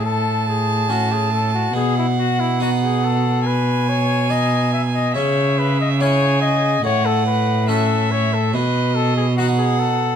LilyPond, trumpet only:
\new Staff \with { instrumentName = "Trumpet" } { \time 4/4 \key b \mixolydian \tempo 4 = 71 a'8 gis'8 fis'16 gis'16 a'16 fis'16 gis'16 e'16 fis'16 e'16 fis'16 gis'16 a'8 | b'8 cis''8 dis''8 e''16 dis''16 cis''8 b'16 dis''16 cis''8 dis''8 | cis''16 a'16 b'8 a'8 cis''16 a'16 b'8 a'16 gis'16 fis'16 gis'16 a'8 | }